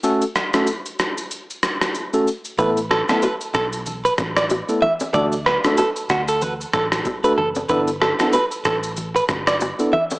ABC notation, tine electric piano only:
X:1
M:4/4
L:1/16
Q:"Swing 16ths" 1/4=94
K:D
V:1 name="Tine electric piano"
[A,CFA] z2 [A,CFA] z8 z [A,CFA] z2 | [A,B,EA] z2 [A,B,EA] z8 z [A,B,EA] z2 | [A,DFA] z2 [A,DFA] z8 z [A,DFA] z2 | [B,DEA] z2 [B,DEA] z8 z [B,DEA] z2 |]